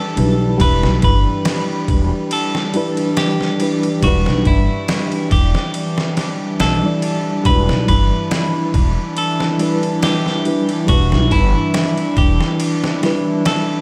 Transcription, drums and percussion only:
0.17 ride
0.60 kick, ride
0.83 snare
1.02 kick, ride
1.45 snare, ride
1.88 kick, ride
2.31 ride
2.55 snare
2.74 ride
2.97 ride
3.17 snare, ride
3.41 snare
3.60 ride
3.83 ride
4.03 kick, ride
4.26 snare
4.45 kick, ride
4.88 snare, ride
5.12 ride
5.31 kick, ride
5.55 snare
5.74 ride
5.98 snare
6.17 snare, ride
6.60 snare, ride
7.02 ride
7.45 kick, ride
7.69 snare
7.88 kick, ride
8.31 snare, ride
8.74 kick, ride
9.17 ride
9.40 snare
9.59 ride
9.83 ride
10.03 snare, ride
10.26 snare
10.45 ride
10.69 ride
10.88 kick, ride
11.12 snare
11.31 kick, ride
11.74 snare, ride
11.97 ride
12.17 kick, ride
12.41 snare
12.60 ride
12.84 snare
13.03 snare, ride
13.45 snare, ride

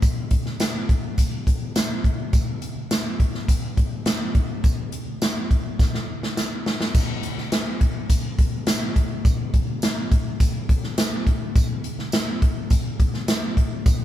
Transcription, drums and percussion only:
0.02 kick, closed hi-hat, tambourine
0.31 kick, closed hi-hat
0.46 snare
0.60 snare, closed hi-hat, tambourine
0.89 kick, closed hi-hat
1.18 kick, closed hi-hat, tambourine
1.47 kick, closed hi-hat
1.76 snare, closed hi-hat, tambourine
2.04 kick, closed hi-hat
2.33 kick, closed hi-hat, tambourine
2.62 closed hi-hat
2.91 snare, closed hi-hat, tambourine
3.20 kick, closed hi-hat
3.34 snare
3.48 kick, closed hi-hat, tambourine
3.77 kick, closed hi-hat
4.06 snare, closed hi-hat, tambourine
4.35 kick, closed hi-hat
4.64 kick, closed hi-hat, tambourine
4.92 closed hi-hat
5.22 snare, closed hi-hat, tambourine
5.51 kick, closed hi-hat
5.79 kick, snare, tambourine
5.94 snare
6.23 snare
6.37 snare, tambourine
6.66 snare
6.81 snare
6.95 kick, crash, tambourine
7.23 closed hi-hat
7.38 snare
7.52 snare, closed hi-hat, tambourine
7.81 kick, closed hi-hat
8.10 kick, closed hi-hat, tambourine
8.39 kick, closed hi-hat
8.67 snare, closed hi-hat, tambourine
8.96 kick, closed hi-hat
9.25 kick, closed hi-hat, tambourine
9.54 kick, closed hi-hat
9.82 snare, closed hi-hat, tambourine
10.12 kick, closed hi-hat
10.40 kick, closed hi-hat, tambourine
10.69 kick, closed hi-hat
10.84 snare
10.98 snare, closed hi-hat, tambourine
11.27 kick, closed hi-hat
11.55 kick, closed hi-hat, tambourine
11.84 closed hi-hat
11.99 snare
12.12 snare, closed hi-hat, tambourine
12.42 kick, closed hi-hat
12.70 kick, closed hi-hat, tambourine
13.00 kick, closed hi-hat
13.14 snare
13.28 snare, closed hi-hat, tambourine
13.57 kick, closed hi-hat
13.86 kick, closed hi-hat, tambourine

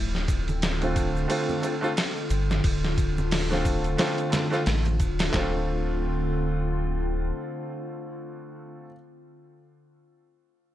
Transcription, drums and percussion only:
0.15 snare, shaker
0.28 kick, ride, shaker
0.48 ride, low conga, shaker
0.62 snare, ride, shaker
0.82 ride, shaker
0.96 kick, ride, shaker
1.17 shaker
1.30 ride, shaker
1.49 low conga, shaker
1.63 ride, shaker
1.83 shaker
1.97 snare, ride, shaker
2.17 shaker
2.30 ride, shaker
2.51 snare, low conga, shaker
2.64 kick, ride, shaker
2.84 snare, shaker
2.98 kick, ride, shaker
3.18 low conga, shaker
3.31 snare, open hi-hat, shaker
3.50 snare, shaker
3.65 kick, ride, shaker
3.84 ride, shaker
3.98 snare, ride, shaker
4.18 ride, shaker
4.32 snare, ride, low conga, shaker
4.53 snare, shaker
4.66 snare, ride, shaker
4.85 ride, low conga, shaker
5.00 kick, ride, shaker
5.19 snare, ride, shaker
5.33 kick, snare, clap

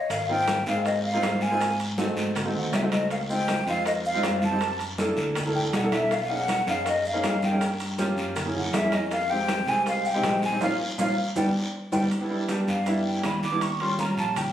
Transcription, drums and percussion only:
0.10 high bongo, high conga, high timbale, long guiro, maracas
0.29 high conga
0.48 high bongo, high conga, high timbale, low timbale, short guiro, maracas
0.66 high conga, short guiro, maracas
0.85 high bongo, high conga, high timbale, long guiro, maracas
1.04 high conga
1.23 high bongo, low bongo, high conga, high timbale, low timbale, short guiro, maracas
1.41 short guiro, maracas
1.60 high bongo, high conga, high timbale, long guiro, maracas
1.79 high conga, high timbale, maracas
1.98 high bongo, high conga, low timbale, short guiro, maracas
2.17 high bongo, short guiro, maracas
2.35 high bongo, high conga, low conga, high timbale, long guiro, maracas
2.54 high bongo, high conga
2.73 high bongo, low bongo, high conga, high timbale, low timbale, short guiro, maracas
2.92 high bongo, high conga, high timbale, short guiro, maracas
3.10 high bongo, high timbale, long guiro, maracas
3.30 high conga, maracas
3.48 high bongo, high conga, high timbale, low timbale, short guiro, maracas
3.67 high conga, short guiro, maracas
3.86 high bongo, high conga, high timbale, long guiro, maracas
4.05 high conga, maracas
4.23 high bongo, low bongo, high conga, high timbale, low timbale, short guiro, maracas
4.42 high conga, short guiro, maracas
4.61 high bongo, high conga, high timbale, long guiro, maracas
4.79 high conga, high timbale, maracas
4.98 high bongo, high conga, low timbale, short guiro, maracas
5.17 high bongo, high conga, short guiro, maracas
5.35 high bongo, high conga, low conga, high timbale, long guiro, maracas
5.55 high bongo, high conga, low conga
5.73 high bongo, low bongo, high conga, high timbale, low timbale, short guiro, maracas
5.92 high bongo, high conga, high timbale, short guiro, maracas
6.11 high bongo, high conga, high timbale, long guiro, maracas
6.30 high conga
6.48 high bongo, high conga, high timbale, low timbale, short guiro, maracas
6.67 high conga, short guiro, maracas
6.86 high bongo, high conga, high timbale, long guiro, maracas
7.05 high conga, maracas
7.23 high bongo, low bongo, high conga, high timbale, low timbale, short guiro, maracas
7.42 high conga, short guiro, maracas
7.61 high bongo, high timbale, long guiro, maracas
7.80 high conga, high timbale, maracas
7.98 high bongo, high conga, low timbale, short guiro, maracas
8.17 high bongo, high conga, short guiro, maracas
8.36 high bongo, high conga, low conga, high timbale, long guiro, maracas
8.55 high bongo, high conga, low conga
8.73 high bongo, low bongo, high conga, high timbale, low timbale, short guiro, maracas
8.92 high bongo, high conga, high timbale, short guiro, maracas
9.11 high bongo, high timbale, long guiro, maracas
9.31 high conga
9.48 high bongo, high conga, high timbale, low timbale, short guiro, maracas
9.67 high conga, short guiro, maracas
9.86 high bongo, high conga, high timbale, long guiro, maracas
10.05 high conga, maracas
10.24 high bongo, low bongo, high conga, high timbale, low timbale, short guiro, maracas
10.42 high conga, short guiro, maracas
10.61 low bongo, high conga, high timbale, long guiro, maracas
10.98 low bongo, high conga, high timbale, long guiro, maracas
11.36 low bongo, high conga, high timbale, long guiro, maracas
11.92 low bongo, high conga, high timbale, long guiro, maracas
12.11 high conga, high timbale, long guiro, maracas
12.30 high conga
12.49 high conga, high timbale, low timbale, short guiro, maracas
12.68 high conga, short guiro, maracas
12.86 high conga, high timbale, long guiro, maracas
13.06 high conga
13.23 high conga, high timbale, low timbale, short guiro, maracas
13.43 high conga, short guiro, maracas
13.61 high timbale, long guiro, maracas
13.80 high conga, high timbale
13.99 high conga, low timbale, short guiro, maracas
14.18 short guiro, maracas
14.36 high conga, low conga, high timbale, long guiro, maracas

